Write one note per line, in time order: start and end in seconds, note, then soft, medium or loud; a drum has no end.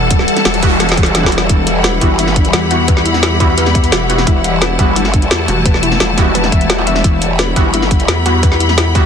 0.00 0.27 E1 loud
0.00 9.06 E3 medium
0.00 9.06 G3 medium
0.00 9.06 E4 medium
0.00 9.06 G4 medium
0.00 1.47 A4 medium
0.00 9.06 F#5 medium
0.00 1.81 A5 medium
0.11 kick loud
0.11 closed hi-hat loud
0.11 noise sweep medium
0.19 snare soft
0.28 closed hi-hat medium
0.37 snare soft
0.37 closed hi-hat soft
0.45 1.31 E1 loud
0.45 snare loud
0.45 closed hi-hat medium
0.54 closed hi-hat soft
0.63 0.70 G3 medium
0.63 0.70 B3 medium
0.63 0.70 E4 medium
0.63 0.70 F#4 loud
0.63 kick loud
0.63 closed hi-hat medium
0.80 snare medium
0.80 closed hi-hat medium
0.89 snare medium
0.89 closed hi-hat soft
0.97 kick loud
0.97 closed hi-hat medium
1.03 snare medium
1.03 closed hi-hat soft
1.15 snare medium
1.15 closed hi-hat loud
1.23 1.30 G3 medium
1.23 1.30 B3 medium
1.23 1.30 E4 medium
1.23 1.30 F#4 medium
1.23 kick medium
1.23 snare loud
1.32 1.48 E1 loud
1.32 closed hi-hat medium
1.38 snare loud
1.49 2.00 E1 loud
1.49 1.61 E4 medium
1.49 4.26 G4 medium
1.49 kick loud
1.49 closed hi-hat loud
1.67 closed hi-hat medium
1.79 4.58 B5 medium
1.84 1.95 B4 medium
1.84 snare loud
1.84 closed hi-hat medium
2.01 2.52 G1 loud
2.01 2.09 G3 medium
2.01 2.09 B3 medium
2.01 2.13 E4 medium
2.01 2.09 E4 medium
2.01 2.09 F#4 medium
2.01 kick loud
2.01 closed hi-hat medium
2.19 2.25 E4 medium
2.19 closed hi-hat medium
2.27 snare soft
2.36 kick loud
2.36 closed hi-hat medium
2.45 closed hi-hat soft
2.53 3.91 E2 loud
2.53 snare loud
2.53 closed hi-hat loud
2.71 2.78 G3 medium
2.71 2.78 B3 medium
2.71 2.78 E4 medium
2.71 2.78 F#4 medium
2.71 2.87 F#4 medium
2.71 closed hi-hat medium
2.88 2.95 B4 medium
2.88 kick loud
2.88 closed hi-hat medium
2.97 snare soft
3.06 3.17 E4 medium
3.06 closed hi-hat medium
3.14 snare soft
3.23 3.34 E4 medium
3.23 snare loud
3.23 closed hi-hat medium
3.40 3.47 G3 medium
3.40 3.47 B3 medium
3.40 3.47 E4 medium
3.40 3.47 F#4 loud
3.40 kick loud
3.40 closed hi-hat medium
3.58 3.69 B4 medium
3.58 closed hi-hat medium
3.66 snare soft
3.75 3.86 E5 medium
3.75 kick loud
3.75 closed hi-hat medium
3.84 closed hi-hat soft
3.92 4.25 E1 loud
3.92 4.08 F#4 medium
3.92 snare loud
3.92 closed hi-hat loud
4.10 4.17 G3 medium
4.10 4.17 B3 medium
4.10 4.17 E4 medium
4.10 4.17 F#4 medium
4.10 4.16 F#4 medium
4.10 closed hi-hat medium
4.18 snare medium
4.27 4.78 E1 medium
4.27 7.03 A3 medium
4.27 4.38 E4 medium
4.27 kick loud
4.27 closed hi-hat medium
4.44 closed hi-hat medium
4.56 7.35 A5 medium
4.62 4.73 B4 medium
4.62 snare loud
4.62 closed hi-hat medium
4.79 5.30 G1 loud
4.79 4.86 G3 medium
4.79 4.86 B3 medium
4.79 4.90 E4 medium
4.79 4.86 E4 medium
4.79 4.86 F#4 medium
4.79 kick loud
4.79 closed hi-hat medium
4.96 5.03 E4 medium
4.96 closed hi-hat medium
5.05 snare soft
5.14 kick loud
5.14 closed hi-hat medium
5.22 closed hi-hat soft
5.31 5.47 E2 loud
5.31 snare loud
5.31 closed hi-hat medium
5.48 5.99 E1 loud
5.48 5.65 F#4 medium
5.48 closed hi-hat medium
5.65 5.72 B4 medium
5.65 kick loud
5.65 closed hi-hat medium
5.74 snare soft
5.83 5.94 E4 medium
5.83 closed hi-hat medium
5.92 snare soft
6.00 6.51 E1 loud
6.00 6.11 E4 medium
6.00 snare loud
6.00 closed hi-hat medium
6.18 6.25 G3 medium
6.18 6.25 B3 medium
6.18 6.25 E4 medium
6.18 6.25 F#4 loud
6.18 kick loud
6.18 closed hi-hat medium
6.35 6.46 B4 medium
6.35 closed hi-hat medium
6.44 snare soft
6.52 7.03 E1 medium
6.52 6.63 E5 loud
6.52 kick loud
6.52 closed hi-hat medium
6.61 closed hi-hat soft
6.69 6.81 F#4 medium
6.69 snare loud
6.69 closed hi-hat medium
6.78 6.85 G3 medium
6.78 6.85 B3 medium
6.78 6.85 E4 medium
6.78 6.85 F#4 medium
6.87 6.98 E5 loud
6.87 closed hi-hat medium
6.96 snare soft
7.04 7.55 E1 medium
7.04 7.15 E4 medium
7.04 9.06 G4 medium
7.04 kick loud
7.04 closed hi-hat medium
7.22 closed hi-hat medium
7.34 9.06 B5 medium
7.39 7.50 B4 medium
7.39 snare loud
7.39 closed hi-hat medium
7.56 8.07 G1 loud
7.56 7.63 G3 medium
7.56 7.63 B3 medium
7.56 7.67 E4 medium
7.56 7.63 E4 medium
7.56 7.63 F#4 medium
7.56 kick loud
7.56 closed hi-hat medium
7.74 7.80 E4 medium
7.74 closed hi-hat medium
7.82 snare soft
7.91 kick loud
7.91 closed hi-hat medium
8.00 closed hi-hat soft
8.08 9.06 E2 loud
8.08 snare loud
8.08 closed hi-hat medium
8.26 8.33 G3 medium
8.26 8.33 B3 medium
8.26 8.33 E4 medium
8.26 8.33 F#4 medium
8.26 8.42 F#4 medium
8.26 closed hi-hat medium
8.43 8.50 B4 medium
8.43 kick loud
8.43 closed hi-hat loud
8.52 snare soft
8.60 8.71 E4 medium
8.60 closed hi-hat medium
8.69 snare soft
8.78 8.89 E4 medium
8.78 snare loud
8.78 closed hi-hat medium
8.95 9.02 G3 medium
8.95 9.02 B3 medium
8.95 9.02 E4 medium
8.95 9.02 F#4 loud
8.95 kick loud
8.95 closed hi-hat medium